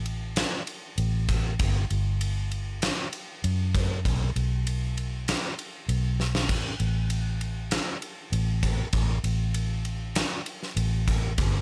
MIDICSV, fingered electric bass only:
0, 0, Header, 1, 2, 480
1, 0, Start_track
1, 0, Tempo, 611621
1, 1255, Time_signature, 4, 2, 24, 8
1, 9115, End_track
2, 0, Start_track
2, 0, Title_t, "Fingered electric bass"
2, 0, Program_c, 0, 33
2, 0, Note_on_c, 0, 33, 83
2, 334, Note_off_c, 0, 33, 0
2, 768, Note_on_c, 0, 33, 76
2, 1252, Note_on_c, 0, 31, 97
2, 1264, Note_off_c, 0, 33, 0
2, 1445, Note_off_c, 0, 31, 0
2, 1496, Note_on_c, 0, 31, 84
2, 2263, Note_off_c, 0, 31, 0
2, 2700, Note_on_c, 0, 42, 82
2, 3177, Note_on_c, 0, 35, 90
2, 3189, Note_off_c, 0, 42, 0
2, 3369, Note_off_c, 0, 35, 0
2, 3420, Note_on_c, 0, 35, 84
2, 4186, Note_off_c, 0, 35, 0
2, 4619, Note_on_c, 0, 35, 80
2, 5093, Note_off_c, 0, 35, 0
2, 5093, Note_on_c, 0, 33, 95
2, 5287, Note_off_c, 0, 33, 0
2, 5337, Note_on_c, 0, 33, 82
2, 6104, Note_off_c, 0, 33, 0
2, 6532, Note_on_c, 0, 33, 83
2, 6918, Note_off_c, 0, 33, 0
2, 7008, Note_on_c, 0, 33, 85
2, 7204, Note_off_c, 0, 33, 0
2, 7248, Note_on_c, 0, 33, 84
2, 8019, Note_off_c, 0, 33, 0
2, 8448, Note_on_c, 0, 33, 80
2, 8932, Note_on_c, 0, 31, 96
2, 8944, Note_off_c, 0, 33, 0
2, 9115, Note_off_c, 0, 31, 0
2, 9115, End_track
0, 0, End_of_file